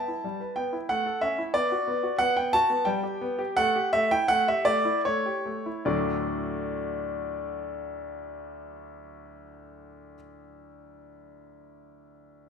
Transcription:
0.00 0.53 A5 medium
0.08 0.26 E4 soft
0.24 0.40 G3 medium
0.41 0.58 B4 soft
0.56 0.74 B3 medium
0.56 0.76 G5 medium
0.73 0.89 E4 medium
0.89 1.05 A3 medium
0.89 1.22 F#5 loud
1.06 1.23 A4 medium
1.21 1.39 C#4 medium
1.21 1.41 E5 loud
1.38 1.54 E4 medium
1.54 1.70 B3 medium
1.54 2.16 D5 loud
1.72 1.88 F#4 medium
1.88 2.05 B3 medium
2.03 2.21 F#4 medium
2.19 2.35 B3 medium
2.19 2.36 F#5 loud
2.37 2.54 B3 medium
2.37 2.53 G5 loud
2.53 2.71 F#4 medium
2.53 2.87 A5 loud
2.70 2.87 B3 medium
2.85 3.03 G3 medium
2.85 3.52 G5 loud
3.03 3.22 G4 medium
3.21 3.40 B3 medium
3.39 3.56 G4 medium
3.57 3.74 A3 medium
3.57 3.89 F#5 loud
3.76 3.94 G4 medium
3.93 4.12 A3 medium
3.93 4.11 E5 loud
4.11 4.30 E4 medium
4.11 4.29 G5 loud
4.28 4.47 A3 medium
4.28 4.47 F#5 loud
4.48 4.67 G4 medium
4.48 4.67 E5 loud
4.65 4.86 A3 medium
4.65 5.00 D5 loud
4.85 5.06 E4 medium
5.05 5.25 A3 medium
5.05 5.86 C#5 loud
5.26 5.47 G4 medium
5.46 5.67 A3 medium
5.66 5.86 E4 medium
5.85 10.14 D2 medium
5.85 10.14 A2 medium
5.85 10.14 F#3 medium
5.85 10.15 A3 medium
5.85 10.14 D4 medium
5.85 10.15 F#4 medium
5.85 10.14 D5 medium

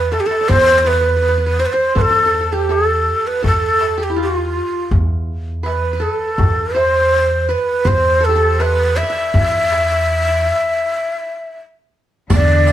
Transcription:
0.00 0.14 E2 medium
0.00 0.14 B4 medium
0.00 0.54 B4 medium
0.12 0.26 A4 medium
0.12 0.22 A4 medium
0.12 darbuka tek medium
0.20 0.28 G4 medium
0.26 1.43 A4 medium
0.26 0.50 A4 medium
0.31 darbuka ka medium
0.41 1.39 D5 medium
0.48 1.62 E2 medium
0.48 0.91 C5 medium
0.48 0.78 C5 loud
0.48 darbuka dum medium
0.78 0.89 C5 medium
0.85 0.92 B4 medium
0.85 1.61 B4 medium
0.85 darbuka tek medium
0.93 1.01 B4 medium
1.01 1.08 B4 medium
1.08 1.16 B4 soft
1.16 1.22 B4 medium
1.22 1.28 B4 soft
1.29 1.37 B4 medium
1.38 1.46 B4 medium
1.42 darbuka ka soft
1.46 1.65 B4 medium
1.59 1.73 C5 medium
1.59 1.67 C5 medium
1.59 darbuka ka soft
1.66 1.74 B4 medium
1.73 1.96 C5 medium
1.73 2.79 C5 medium
1.95 3.08 E2 medium
1.95 2.03 A4 medium
1.95 2.02 B4 medium
1.95 darbuka dum medium
2.01 2.54 A4 medium
2.01 2.10 A4 medium
2.11 2.18 A4 medium
2.18 2.25 A4 soft
2.26 2.34 A4 medium
2.34 2.40 A4 soft
2.41 2.69 A4 medium
2.52 3.78 G4 medium
2.52 2.73 G4 medium
2.69 3.42 A4 medium
2.69 3.29 A4 medium
2.69 darbuka tek medium
3.08 darbuka ka soft
3.26 3.45 B4 medium
3.26 darbuka ka soft
3.42 4.56 E2 medium
3.42 4.60 A4 medium
3.42 4.05 A4 medium
3.42 darbuka dum medium
3.81 darbuka tek medium
3.98 5.23 G4 medium
4.03 4.20 G4 medium
4.10 4.22 E4 soft
4.16 5.51 F4 medium
4.22 4.90 F4 medium
4.36 darbuka ka soft
4.55 darbuka ka soft
4.91 6.04 E2 medium
4.91 darbuka dum medium
5.63 5.93 B4 medium
5.63 6.03 B4 medium
5.63 darbuka tek medium
5.93 6.81 B4 soft
6.00 7.17 A4 medium
6.00 6.77 A4 medium
6.00 darbuka ka soft
6.21 darbuka ka soft
6.38 7.51 E2 medium
6.38 darbuka dum medium
6.75 7.55 C5 medium
6.75 7.52 C5 medium
6.75 darbuka tek medium
7.31 darbuka ka soft
7.49 7.91 B4 medium
7.49 7.89 B4 medium
7.85 8.98 E2 medium
7.85 8.52 C5 medium
7.85 8.26 C5 medium
7.85 darbuka dum medium
8.21 8.35 A4 medium
8.25 8.62 A4 medium
8.29 9.55 G4 medium
8.36 9.53 A4 medium
8.52 8.66 C5 soft
8.60 9.69 B4 medium
8.60 8.98 B4 medium
8.60 darbuka tek medium
8.97 9.09 E5 medium
8.97 11.56 E5 medium
8.97 darbuka ka soft
9.03 10.01 D5 medium
9.10 11.52 E5 medium
9.17 darbuka ka soft
9.34 10.47 E2 medium
9.34 darbuka dum medium
9.53 darbuka ka soft
9.72 darbuka tek medium
10.46 darbuka ka soft
12.30 12.72 E2 loud
12.30 12.72 D3 medium
12.30 12.72 D5 medium
12.30 riq medium
12.30 darbuka dum loud
12.34 12.72 D5 loud
12.49 riq soft
12.67 riq soft
12.67 darbuka tek medium

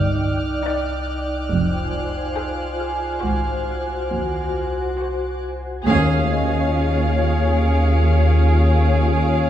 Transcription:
0.00 0.51 G1 medium
0.00 3.20 C2 medium
0.00 0.51 G2 medium
0.00 1.51 D#4 soft
0.00 1.51 D5 soft
0.00 1.51 G5 soft
0.00 5.39 D6 soft
0.00 4.52 F6 soft
0.00 5.38 F#6 soft
0.66 1.30 D#4 soft
0.66 1.30 D5 soft
1.50 2.19 F1 soft
1.50 2.20 F2 medium
1.50 3.25 F4 soft
1.50 5.86 C5 soft
1.50 5.85 G#5 soft
2.35 3.02 G#4 soft
2.35 3.02 C5 soft
2.80 5.43 G#4 soft
2.80 5.42 F6 soft
3.22 3.95 G#1 soft
3.22 5.82 C2 medium
3.22 3.95 G#2 soft
3.22 3.90 F#4 soft
3.22 3.89 C5 soft
3.27 5.87 F#4 soft
4.11 4.82 D#2 soft
4.99 5.65 F#4 soft
4.99 5.65 C5 soft
5.85 9.50 D#2 medium
5.85 9.50 C#4 soft
5.85 9.50 F4 medium
5.85 9.50 G#4 soft
5.85 9.50 C#5 soft
5.85 9.50 C#5 medium
5.85 9.50 F5 soft
5.85 9.50 G#5 medium
6.30 9.50 D#5 soft
6.72 9.50 D7 soft

